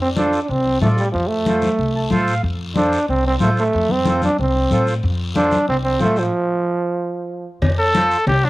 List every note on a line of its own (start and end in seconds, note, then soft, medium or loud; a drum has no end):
0.00 0.36 F2 medium
0.00 0.09 C4 medium
0.16 0.40 D4 medium
0.16 0.39 F4 medium
0.16 0.40 A4 medium
0.16 0.40 C5 medium
0.16 high conga medium
0.16 short guiro medium
0.33 short guiro medium
0.42 0.51 D4 medium
0.48 0.75 C2 medium
0.48 0.81 C4 medium
0.48 long guiro medium
0.66 high conga soft
0.81 1.07 A2 medium
0.81 0.89 A3 medium
0.81 1.04 F4 medium
0.81 1.04 A4 medium
0.81 1.04 D5 medium
0.81 high conga medium
0.81 short guiro medium
0.97 1.12 G3 medium
0.97 short guiro medium
1.12 1.66 F2 medium
1.12 1.29 F3 medium
1.12 high conga soft
1.12 long guiro medium
1.27 2.26 A3 medium
1.46 1.69 F4 medium
1.46 1.69 A4 medium
1.46 1.70 C5 medium
1.46 high conga medium
1.46 short guiro medium
1.62 high conga medium
1.62 short guiro medium
1.79 2.05 C2 medium
1.79 long guiro medium
1.95 2.10 A5 medium
1.95 high conga soft
2.10 2.38 A2 medium
2.10 2.34 F4 medium
2.10 2.34 A4 medium
2.10 2.34 C5 medium
2.10 2.42 F5 medium
2.10 high conga medium
2.10 short guiro medium
2.28 short guiro medium
2.43 2.96 F2 medium
2.43 high conga soft
2.43 long guiro medium
2.76 3.06 D4 medium
2.76 2.99 F4 medium
2.76 2.99 A4 medium
2.76 2.99 C5 medium
2.76 high conga medium
2.76 short guiro medium
2.93 short guiro medium
3.08 3.35 C2 medium
3.08 3.24 C4 medium
3.08 long guiro medium
3.25 3.34 C4 medium
3.25 high conga soft
3.40 3.67 A2 medium
3.40 3.50 A3 medium
3.40 3.63 F4 medium
3.40 3.64 A4 medium
3.40 3.64 C5 medium
3.40 high conga medium
3.40 short guiro medium
3.57 3.93 A3 medium
3.57 short guiro medium
3.73 4.26 F2 medium
3.73 high conga soft
3.73 long guiro medium
3.89 4.23 C4 medium
3.89 high conga medium
4.05 4.29 F4 medium
4.05 4.29 A4 medium
4.05 4.29 C5 medium
4.05 high conga medium
4.05 short guiro medium
4.22 4.39 D4 medium
4.22 high conga medium
4.22 short guiro medium
4.38 4.65 C2 medium
4.38 4.84 C4 medium
4.38 long guiro medium
4.54 high conga soft
4.71 4.97 A2 medium
4.71 4.94 F4 medium
4.71 4.94 A4 medium
4.71 4.94 C5 medium
4.71 high conga medium
4.71 short guiro medium
4.87 short guiro medium
5.03 5.55 F2 loud
5.03 high conga soft
5.03 long guiro medium
5.35 5.66 D4 loud
5.35 5.58 F4 medium
5.35 5.58 A4 medium
5.35 5.59 C5 medium
5.35 high conga medium
5.35 short guiro medium
5.51 high conga medium
5.51 short guiro medium
5.68 5.94 C2 medium
5.68 5.76 C4 medium
5.68 long guiro medium
5.84 5.99 C4 medium
5.84 high conga soft
5.99 6.27 A2 medium
5.99 6.22 F4 medium
5.99 6.23 A4 medium
5.99 6.23 C5 medium
5.99 high conga medium
5.99 short guiro medium
6.03 6.20 A3 medium
6.16 7.47 F3 medium
6.16 short guiro medium
7.62 8.14 F2 medium
7.62 cowbell loud
7.62 high conga soft
7.62 low conga medium
7.62 long guiro medium
7.79 8.26 A4 medium
7.94 8.17 F4 medium
7.94 8.18 A4 medium
7.94 8.18 C5 medium
7.94 cowbell medium
7.94 high conga medium
7.94 short guiro medium
8.11 short guiro medium
8.27 8.50 C2 medium
8.27 8.46 G4 medium
8.27 cowbell medium
8.27 low conga medium
8.27 long guiro medium
8.44 8.50 D4 medium
8.44 high conga soft